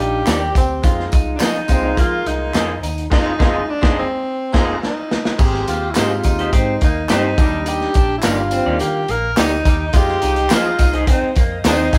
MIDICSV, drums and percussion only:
0, 0, Header, 1, 2, 480
1, 0, Start_track
1, 0, Tempo, 569260
1, 702, Time_signature, 4, 2, 24, 8
1, 10102, End_track
2, 0, Start_track
2, 0, Title_t, "Drums"
2, 224, Note_on_c, 9, 39, 85
2, 224, Note_on_c, 9, 54, 77
2, 229, Note_on_c, 9, 42, 75
2, 231, Note_on_c, 9, 38, 104
2, 308, Note_off_c, 9, 39, 0
2, 308, Note_off_c, 9, 54, 0
2, 313, Note_off_c, 9, 42, 0
2, 316, Note_off_c, 9, 38, 0
2, 466, Note_on_c, 9, 36, 88
2, 472, Note_on_c, 9, 42, 68
2, 472, Note_on_c, 9, 54, 49
2, 550, Note_off_c, 9, 36, 0
2, 556, Note_off_c, 9, 42, 0
2, 557, Note_off_c, 9, 54, 0
2, 702, Note_on_c, 9, 54, 53
2, 706, Note_on_c, 9, 36, 100
2, 710, Note_on_c, 9, 42, 84
2, 786, Note_off_c, 9, 54, 0
2, 790, Note_off_c, 9, 36, 0
2, 794, Note_off_c, 9, 42, 0
2, 839, Note_on_c, 9, 38, 37
2, 923, Note_off_c, 9, 38, 0
2, 943, Note_on_c, 9, 54, 53
2, 952, Note_on_c, 9, 36, 95
2, 952, Note_on_c, 9, 42, 68
2, 1027, Note_off_c, 9, 54, 0
2, 1036, Note_off_c, 9, 36, 0
2, 1036, Note_off_c, 9, 42, 0
2, 1178, Note_on_c, 9, 39, 96
2, 1178, Note_on_c, 9, 54, 92
2, 1189, Note_on_c, 9, 42, 75
2, 1197, Note_on_c, 9, 38, 103
2, 1263, Note_off_c, 9, 39, 0
2, 1263, Note_off_c, 9, 54, 0
2, 1273, Note_off_c, 9, 42, 0
2, 1282, Note_off_c, 9, 38, 0
2, 1315, Note_on_c, 9, 42, 40
2, 1400, Note_off_c, 9, 42, 0
2, 1417, Note_on_c, 9, 54, 59
2, 1425, Note_on_c, 9, 42, 68
2, 1427, Note_on_c, 9, 36, 70
2, 1501, Note_off_c, 9, 54, 0
2, 1509, Note_off_c, 9, 42, 0
2, 1511, Note_off_c, 9, 36, 0
2, 1663, Note_on_c, 9, 54, 36
2, 1664, Note_on_c, 9, 36, 80
2, 1671, Note_on_c, 9, 42, 80
2, 1747, Note_off_c, 9, 54, 0
2, 1749, Note_off_c, 9, 36, 0
2, 1755, Note_off_c, 9, 42, 0
2, 1909, Note_on_c, 9, 42, 73
2, 1993, Note_off_c, 9, 42, 0
2, 2144, Note_on_c, 9, 39, 74
2, 2144, Note_on_c, 9, 54, 75
2, 2149, Note_on_c, 9, 42, 73
2, 2152, Note_on_c, 9, 38, 95
2, 2228, Note_off_c, 9, 39, 0
2, 2228, Note_off_c, 9, 54, 0
2, 2234, Note_off_c, 9, 42, 0
2, 2236, Note_off_c, 9, 38, 0
2, 2389, Note_on_c, 9, 54, 47
2, 2390, Note_on_c, 9, 42, 71
2, 2473, Note_off_c, 9, 54, 0
2, 2475, Note_off_c, 9, 42, 0
2, 2512, Note_on_c, 9, 42, 48
2, 2597, Note_off_c, 9, 42, 0
2, 2627, Note_on_c, 9, 36, 101
2, 2627, Note_on_c, 9, 49, 78
2, 2631, Note_on_c, 9, 38, 93
2, 2711, Note_off_c, 9, 49, 0
2, 2712, Note_off_c, 9, 36, 0
2, 2715, Note_off_c, 9, 38, 0
2, 2867, Note_on_c, 9, 36, 101
2, 2874, Note_on_c, 9, 38, 99
2, 2952, Note_off_c, 9, 36, 0
2, 2959, Note_off_c, 9, 38, 0
2, 3229, Note_on_c, 9, 36, 101
2, 3235, Note_on_c, 9, 38, 99
2, 3313, Note_off_c, 9, 36, 0
2, 3320, Note_off_c, 9, 38, 0
2, 3829, Note_on_c, 9, 36, 98
2, 3829, Note_on_c, 9, 49, 74
2, 3833, Note_on_c, 9, 38, 101
2, 3913, Note_off_c, 9, 36, 0
2, 3913, Note_off_c, 9, 49, 0
2, 3917, Note_off_c, 9, 38, 0
2, 4075, Note_on_c, 9, 38, 73
2, 4160, Note_off_c, 9, 38, 0
2, 4312, Note_on_c, 9, 38, 94
2, 4397, Note_off_c, 9, 38, 0
2, 4429, Note_on_c, 9, 38, 88
2, 4514, Note_off_c, 9, 38, 0
2, 4543, Note_on_c, 9, 49, 81
2, 4545, Note_on_c, 9, 54, 51
2, 4546, Note_on_c, 9, 36, 105
2, 4627, Note_off_c, 9, 49, 0
2, 4629, Note_off_c, 9, 54, 0
2, 4630, Note_off_c, 9, 36, 0
2, 4672, Note_on_c, 9, 38, 33
2, 4757, Note_off_c, 9, 38, 0
2, 4786, Note_on_c, 9, 42, 72
2, 4788, Note_on_c, 9, 54, 51
2, 4791, Note_on_c, 9, 38, 36
2, 4870, Note_off_c, 9, 42, 0
2, 4872, Note_off_c, 9, 54, 0
2, 4875, Note_off_c, 9, 38, 0
2, 5016, Note_on_c, 9, 39, 94
2, 5016, Note_on_c, 9, 54, 87
2, 5021, Note_on_c, 9, 42, 74
2, 5029, Note_on_c, 9, 38, 101
2, 5101, Note_off_c, 9, 39, 0
2, 5101, Note_off_c, 9, 54, 0
2, 5105, Note_off_c, 9, 42, 0
2, 5113, Note_off_c, 9, 38, 0
2, 5256, Note_on_c, 9, 54, 57
2, 5264, Note_on_c, 9, 42, 65
2, 5267, Note_on_c, 9, 36, 68
2, 5341, Note_off_c, 9, 54, 0
2, 5349, Note_off_c, 9, 42, 0
2, 5352, Note_off_c, 9, 36, 0
2, 5388, Note_on_c, 9, 42, 44
2, 5472, Note_off_c, 9, 42, 0
2, 5503, Note_on_c, 9, 54, 36
2, 5504, Note_on_c, 9, 36, 82
2, 5507, Note_on_c, 9, 42, 85
2, 5587, Note_off_c, 9, 54, 0
2, 5589, Note_off_c, 9, 36, 0
2, 5592, Note_off_c, 9, 42, 0
2, 5743, Note_on_c, 9, 42, 70
2, 5748, Note_on_c, 9, 54, 33
2, 5749, Note_on_c, 9, 36, 81
2, 5827, Note_off_c, 9, 42, 0
2, 5832, Note_off_c, 9, 54, 0
2, 5833, Note_off_c, 9, 36, 0
2, 5980, Note_on_c, 9, 39, 82
2, 5980, Note_on_c, 9, 54, 86
2, 5983, Note_on_c, 9, 42, 76
2, 5985, Note_on_c, 9, 38, 93
2, 6064, Note_off_c, 9, 39, 0
2, 6064, Note_off_c, 9, 54, 0
2, 6067, Note_off_c, 9, 42, 0
2, 6070, Note_off_c, 9, 38, 0
2, 6222, Note_on_c, 9, 36, 106
2, 6225, Note_on_c, 9, 42, 70
2, 6226, Note_on_c, 9, 54, 54
2, 6307, Note_off_c, 9, 36, 0
2, 6310, Note_off_c, 9, 42, 0
2, 6311, Note_off_c, 9, 54, 0
2, 6459, Note_on_c, 9, 42, 78
2, 6464, Note_on_c, 9, 54, 53
2, 6543, Note_off_c, 9, 42, 0
2, 6548, Note_off_c, 9, 54, 0
2, 6585, Note_on_c, 9, 38, 38
2, 6669, Note_off_c, 9, 38, 0
2, 6696, Note_on_c, 9, 42, 69
2, 6701, Note_on_c, 9, 54, 52
2, 6706, Note_on_c, 9, 36, 91
2, 6780, Note_off_c, 9, 42, 0
2, 6785, Note_off_c, 9, 54, 0
2, 6791, Note_off_c, 9, 36, 0
2, 6934, Note_on_c, 9, 39, 93
2, 6934, Note_on_c, 9, 42, 74
2, 6934, Note_on_c, 9, 54, 90
2, 6943, Note_on_c, 9, 38, 99
2, 7019, Note_off_c, 9, 39, 0
2, 7019, Note_off_c, 9, 42, 0
2, 7019, Note_off_c, 9, 54, 0
2, 7027, Note_off_c, 9, 38, 0
2, 7175, Note_on_c, 9, 42, 74
2, 7176, Note_on_c, 9, 54, 61
2, 7259, Note_off_c, 9, 42, 0
2, 7261, Note_off_c, 9, 54, 0
2, 7415, Note_on_c, 9, 54, 35
2, 7422, Note_on_c, 9, 42, 92
2, 7499, Note_off_c, 9, 54, 0
2, 7506, Note_off_c, 9, 42, 0
2, 7660, Note_on_c, 9, 42, 80
2, 7744, Note_off_c, 9, 42, 0
2, 7899, Note_on_c, 9, 42, 73
2, 7901, Note_on_c, 9, 39, 83
2, 7901, Note_on_c, 9, 54, 83
2, 7902, Note_on_c, 9, 38, 105
2, 7984, Note_off_c, 9, 42, 0
2, 7985, Note_off_c, 9, 39, 0
2, 7985, Note_off_c, 9, 54, 0
2, 7986, Note_off_c, 9, 38, 0
2, 8140, Note_on_c, 9, 42, 75
2, 8141, Note_on_c, 9, 36, 90
2, 8148, Note_on_c, 9, 54, 49
2, 8225, Note_off_c, 9, 36, 0
2, 8225, Note_off_c, 9, 42, 0
2, 8232, Note_off_c, 9, 54, 0
2, 8372, Note_on_c, 9, 42, 82
2, 8379, Note_on_c, 9, 36, 101
2, 8382, Note_on_c, 9, 54, 54
2, 8457, Note_off_c, 9, 42, 0
2, 8463, Note_off_c, 9, 36, 0
2, 8467, Note_off_c, 9, 54, 0
2, 8502, Note_on_c, 9, 38, 35
2, 8586, Note_off_c, 9, 38, 0
2, 8615, Note_on_c, 9, 42, 74
2, 8619, Note_on_c, 9, 54, 53
2, 8700, Note_off_c, 9, 42, 0
2, 8703, Note_off_c, 9, 54, 0
2, 8737, Note_on_c, 9, 42, 47
2, 8821, Note_off_c, 9, 42, 0
2, 8853, Note_on_c, 9, 39, 97
2, 8853, Note_on_c, 9, 54, 98
2, 8856, Note_on_c, 9, 42, 83
2, 8864, Note_on_c, 9, 38, 112
2, 8937, Note_off_c, 9, 39, 0
2, 8937, Note_off_c, 9, 54, 0
2, 8940, Note_off_c, 9, 42, 0
2, 8948, Note_off_c, 9, 38, 0
2, 9095, Note_on_c, 9, 54, 63
2, 9097, Note_on_c, 9, 42, 72
2, 9100, Note_on_c, 9, 36, 71
2, 9179, Note_off_c, 9, 54, 0
2, 9181, Note_off_c, 9, 42, 0
2, 9185, Note_off_c, 9, 36, 0
2, 9219, Note_on_c, 9, 42, 43
2, 9304, Note_off_c, 9, 42, 0
2, 9337, Note_on_c, 9, 36, 78
2, 9337, Note_on_c, 9, 42, 83
2, 9338, Note_on_c, 9, 54, 37
2, 9421, Note_off_c, 9, 36, 0
2, 9421, Note_off_c, 9, 42, 0
2, 9423, Note_off_c, 9, 54, 0
2, 9575, Note_on_c, 9, 42, 81
2, 9582, Note_on_c, 9, 54, 36
2, 9583, Note_on_c, 9, 36, 83
2, 9659, Note_off_c, 9, 42, 0
2, 9666, Note_off_c, 9, 54, 0
2, 9667, Note_off_c, 9, 36, 0
2, 9818, Note_on_c, 9, 42, 74
2, 9820, Note_on_c, 9, 38, 99
2, 9823, Note_on_c, 9, 39, 86
2, 9823, Note_on_c, 9, 54, 90
2, 9902, Note_off_c, 9, 42, 0
2, 9904, Note_off_c, 9, 38, 0
2, 9907, Note_off_c, 9, 39, 0
2, 9907, Note_off_c, 9, 54, 0
2, 10058, Note_on_c, 9, 42, 78
2, 10060, Note_on_c, 9, 36, 90
2, 10069, Note_on_c, 9, 54, 55
2, 10102, Note_off_c, 9, 36, 0
2, 10102, Note_off_c, 9, 42, 0
2, 10102, Note_off_c, 9, 54, 0
2, 10102, End_track
0, 0, End_of_file